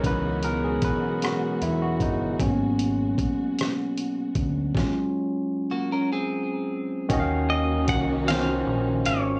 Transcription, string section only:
\new Staff \with { instrumentName = "String section" } { \time 6/8 \key dis \phrygian \tempo 4. = 51 << { <b, gis fis'>2.~ | <b, gis fis'>2. | r2. | <dis ais fis'>2. | } \\ { <e cis' dis'>2. | r2. | r2. | <cis' dis'>2. | } >> }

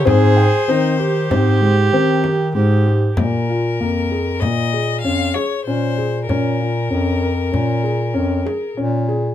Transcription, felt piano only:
\new Staff \with { instrumentName = "Felt piano" } { \time 5/4 \key bes \dorian \tempo 4 = 96 c'8 g''8 c'8 g'8 c'8 aes8 c'8 g'8 aes8 g'8 | bes8 f'8 bes8 aes'8 bes8 aes'8 des'8 aes'8 des'8 aes'8 | des'8 f'8 des'8 bes'8 des'8 aes'8 des'8 aes'8 des'8 aes'8 | }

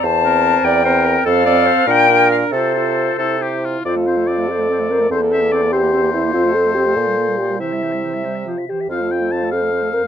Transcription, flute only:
\new Staff \with { instrumentName = "Flute" } { \time 6/8 \key f \major \tempo 4. = 95 a''4. g''4. | f''4. g''4 f''8 | c''2~ c''8 r8 | c''16 a'16 c''16 a'16 c''16 a'16 c''16 a'16 c''16 a'16 c''16 a'16 |
c''16 bes'16 c''16 bes'16 c''16 bes'16 c''16 bes'16 c''16 bes'16 c''16 bes'16 | c''16 a'16 c''16 a'16 c''16 a'16 d''16 bes'16 d''16 bes'16 d''16 bes'16 | c''16 e''16 c''16 e''16 c''16 e''16 c''16 e''16 c''16 e''16 c''16 e''16 | c''16 a'16 c''16 a'16 c''16 a'16 c''16 a'16 c''16 a'16 c''16 r16 | }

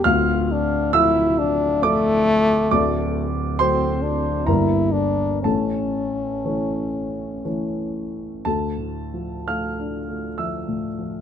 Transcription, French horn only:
\new Staff \with { instrumentName = "French horn" } { \time 3/4 \key d \minor \tempo 4 = 66 f'8 d'8 e'8 d'8 a4~ | a8 r8 c'8 d'8 e'8 d'8 | cis'2~ cis'8 r8 | r2. | }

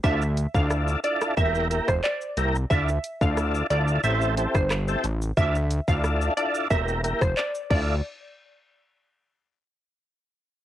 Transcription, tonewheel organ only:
\new Staff \with { instrumentName = "Tonewheel organ" } { \time 4/4 \key d \minor \tempo 4 = 90 <d' e' f' a'>16 r8 <d' e' f' a'>8. <d' e' f' a'>8 <bes e' g' bes'>8 <bes e' g' bes'>16 r8. <bes e' g' bes'>16 r16 | <d' e' f' a'>16 r8 <d' e' f' a'>8. <d' e' f' a'>8 <c' e' g' a'>8 <c' e' g' a'>16 r8 <c' e' g' a'>16 r8 | <d' e' f' a'>16 r8 <d' e' f' a'>8. <d' e' f' a'>8 <bes e' g' bes'>8 <bes e' g' bes'>16 r8. <d' e' f' a'>8 | r1 | }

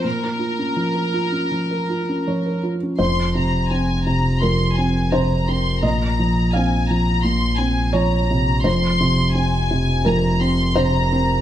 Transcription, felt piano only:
<<
  \new Staff \with { instrumentName = "Felt piano" } { \time 4/4 \key bes \minor \tempo 4 = 85 r2. des''4 | c''2 bes'4 c''4 | ees''4 f''4. r8 des''4 | c''2 bes'4 c''4 | }
  \new Staff \with { instrumentName = "Felt piano" } { \clef bass \time 4/4 \key bes \minor bes,16 bes'16 f'16 des'16 f16 bes'16 f'16 des'16 f16 bes'16 f'16 des'16 f16 bes'16 f'16 des'16 | f,8 c8 c'8 c8 f,8 c'8 c8 c'8 | bes,8 f8 c'8 f8 bes,8 c'8 f8 c8 | f,8 c8 c'8 c8 f,8 c'8 c8 c'8 | }
>>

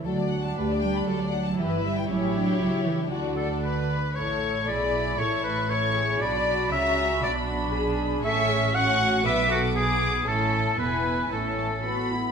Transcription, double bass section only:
\new Staff \with { instrumentName = "Double bass section" } { \clef bass \time 2/4 \key d \major \tempo 4 = 118 d,4 d,4 | d,4 g,,4 | a,,4 cis,4 | d,4. r8 |
\key a \major a,,4 b,,4 | a,,2 | b,,4 cis,4 | b,,2 |
a,,2 | b,,2 | a,,4 e,,4 | a,,4. r8 | }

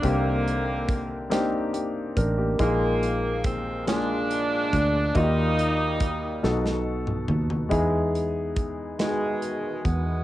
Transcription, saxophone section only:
\new Staff \with { instrumentName = "Saxophone section" } { \clef bass \time 6/8 \key c \minor \tempo 4. = 47 << { bes4. r4. | bes4 c'8 d'4. | ees'2 r4 | \key e \major r4. gis4 b8 | } \\ { <d ees>4. r4. | <ees f>4. <f aes>4. | <g bes>2 r4 | r4. <b, dis>4 gis8 | } >> }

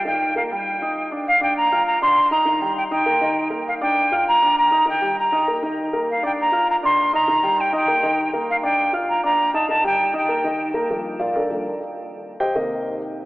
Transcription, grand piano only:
<<
  \new Staff \with { instrumentName = "Grand piano" } { \time 4/4 \key ees \lydian \tempo 4 = 199 <ees ees' ees''>4 <bes bes' bes''>8 <g g' g''>4 <ees' ees'' ees'''>4 <d' d'' d'''>8 | r8 <d' d'' d'''>4 <f' f'' f'''>4 <d' d'' d'''>4 <ees' ees'' ees'''>8 | <ees ees' ees''>8 <g g' g''>4 <ees' ees'' ees'''>8 <bes bes' bes''>8 <ees ees' ees''>4 <bes bes' bes''>8~ | <bes bes' bes''>8 <d' d'' d'''>4 <f' f'' f'''>4 <d' d'' d'''>4 <ees' ees'' ees'''>8 |
<ees ees' ees''>8 <g g' g''>4 <ees' ees'' ees'''>8 <bes bes' bes''>8 <ees ees' ees''>4 <bes bes' bes''>8~ | <bes bes' bes''>8 <d' d'' d'''>4 <f' f'' f'''>4 <d' d'' d'''>4 <ees' ees'' ees'''>8 | <ees ees' ees''>8 <g g' g''>4 <ees' ees'' ees'''>8 <bes bes' bes''>8 <ees ees' ees''>4 <bes bes' bes''>8~ | <bes bes' bes''>8 <d' d'' d'''>4 <f' f'' f'''>4 <d' d'' d'''>4 <ees' ees'' ees'''>8 |
<ees ees' ees''>8 <g g' g''>4 <ees' ees'' ees'''>8 <bes bes' bes''>8 <ees ees' ees''>4 <bes bes' bes''>8 | r4 <f' bes' d'' f''>8 <d' a' bes' d''>4. r4 | r4 <g' c'' ees'' g''>8 <ees' bes' c'' ees''>4. r4 | }
  \new Staff \with { instrumentName = "Grand piano" } { \clef bass \time 4/4 \key ees \lydian r1 | r1 | r1 | r1 |
r1 | r1 | r1 | r1 |
r1 | <g, f bes>2 <g, f bes>8 r4. | r4. <c ees bes>2~ <c ees bes>8 | }
>>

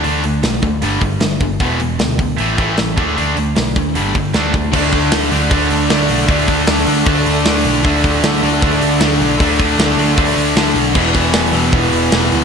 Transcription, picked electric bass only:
\new Staff \with { instrumentName = "Picked electric bass" } { \clef bass \time 4/4 \key d \lydian \tempo 4 = 154 d,8 d,8 b,,8 d,8 g,,8 g,,8 g,,8 g,,8 | e,,4 d,4 a,,8 a,,8 a,,8 d,8 | d,8 d,8 b,,8 d,8 g,,8 g,,8 d,8 d,8 | d,4 d,8 d,8 d,8 d,8 d,8 b,,8 |
d,4 d,8 d,8 d,8 d,8 d,8 b,,8 | d,4 d,8 d,8 d,8 d,8 d,8 b,,8 | d,4 d,8 d,8 d,8 d,8 d,8 b,,8 | e,,4 e,,8 e,,8 e,,8 e,,8 e,,8 d,8 | }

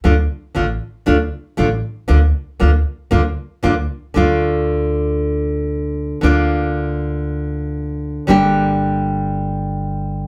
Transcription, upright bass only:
\new Staff \with { instrumentName = "Upright bass" } { \clef bass \time 4/4 \key d \minor \tempo 4 = 117 d,8 r8 a,,8 r8 d,8 r8 a,,8 r8 | d,8 r8 d,8 r8 d,8 r8 d,8 r8 | d,1 | d,1 |
g,,1 | }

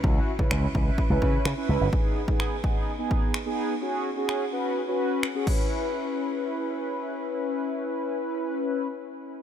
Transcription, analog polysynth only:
\new Staff \with { instrumentName = "Analog polysynth" } { \time 4/4 \key cis \minor \tempo 4 = 127 <cis' e' fis'>8 r16 <cis' e' b'>8 r16 <cis' e' b'>8 r16 <cis' e' b'>8. r16 <cis' e' b'>8 r16 | <dis' gis'>8 r16 <b dis' gis'>8 r16 <b dis' gis'>8 r16 <b dis' gis'>8. r16 <b dis' gis'>8 r16 | <cis' fis' gis'>8 r16 <cis' fis' gis'>8 r16 <cis' fis' b'>8 r16 <cis' fis' b'>8. r16 <cis' fis' gis'>16 <cis' e' b'>8~ | <cis' e' b'>1~ |
<cis' e' b'>1 | }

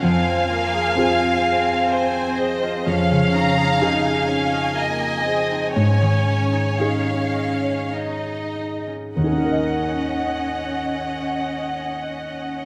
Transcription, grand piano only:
\new Staff \with { instrumentName = "Grand piano" } { \time 3/4 \key ees \dorian \tempo 4 = 60 f,4 <c' f' aes'>2 | f,4 <des ees' aes'>2 | aes,4 <des' ees' aes'>2 | <ees, ees des' ees' bes' ees''>2. | }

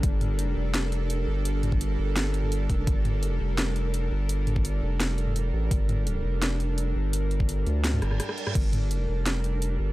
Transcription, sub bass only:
\new Staff \with { instrumentName = "Sub bass" } { \clef bass \time 4/4 \key g \minor \tempo 4 = 169 g,,4. f,,2 g,,8~ | g,,4. g,,2 f,,8 | g,,4. f,,2 g,,8~ | g,,4. f,,2 a,,8 |
g,,4. f,,2 g,,8~ | g,,4. d,4 g,,8 r4 | g,,4. f,,2 g,,8 | }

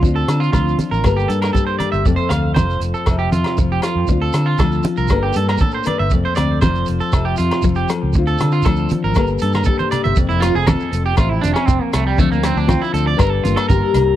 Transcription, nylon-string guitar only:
\new Staff \with { instrumentName = "Nylon-string guitar" } { \time 4/4 \key f \major \tempo 4 = 118 << { <c' d' f'>8 d'4. <bes a'>8 d'4. | <a c' a'>8 c'2. a'8 | <c' d' f'>8 d'4. <bes d' a'>8 d'4. | <a c' a'>8 c'2. a'8 |
<c' d' f'>8 d'4. <bes a'>8 d'4. | c'8 a8 c'8 c'8 c'2 | <f c' d' f'>8 c'8 f'8 d'8 d'8 bes8 g'8 d'8 | } \\ { d4 f4 g,4 g4 | f,4 f4 c4 f4 | r4 f4 g,4 a,8 g,8 | f,4 f4 c4 f4 |
d4 f4 g,4 g4 | f,4 f4 c4 r4 | d4 f4 g,4 g4 | } >> }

